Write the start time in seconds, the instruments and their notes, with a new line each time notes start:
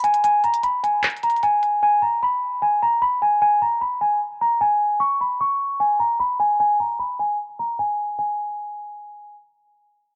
0.04 celesta G#5, closed hi-hat
0.14 closed hi-hat
0.24 celesta G#5, closed hi-hat
0.44 celesta A#5, closed hi-hat
0.54 closed hi-hat
0.63 celesta B5, closed hi-hat
0.83 celesta G#5, closed hi-hat
1.03 clap, closed hi-hat
1.10 closed hi-hat
1.17 closed hi-hat
1.23 celesta A#5, closed hi-hat
1.30 closed hi-hat
1.36 closed hi-hat
1.43 celesta G#5, closed hi-hat
1.63 closed hi-hat
1.83 celesta G#5
2.02 celesta A#5
2.23 celesta B5
2.62 celesta G#5
2.82 celesta A#5
3.02 celesta B5
3.22 celesta G#5
3.42 celesta G#5
3.62 celesta A#5
3.81 celesta B5
4.01 celesta G#5
4.41 celesta A#5
4.61 celesta G#5
5.00 celesta C#6
5.21 celesta B5
5.41 celesta C#6
5.80 celesta G#5
6.00 celesta A#5
6.20 celesta B5
6.40 celesta G#5
6.60 celesta G#5
6.80 celesta A#5
6.99 celesta B5
7.19 celesta G#5
7.59 celesta A#5
7.79 celesta G#5
8.19 celesta G#5